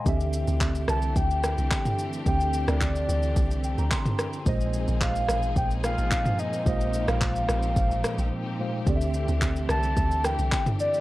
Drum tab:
SH |xxxxxxxxxxxxxxxx|xxxxxxxxxxxxxxxx|xxxxxxxxxxxxxxxx|xxxxxxxxxxxx----|
CP |----x-------x---|----x-------x---|----x-------x---|----x-----------|
SD |------r---r-----|---r----------r-|------r---r-----|---r--r---r-----|
T2 |-------------o--|-------------o--|-------------o--|----------------|
BD |o---o---o---o---|o---o---o---o---|o---o---o---o---|o---o---o-------|

SH |xxxxxxxxxxxxxxxx|
CP |----x-------x---|
SD |------r---r-----|
T2 |-------------o--|
BD |o---o---o---o---|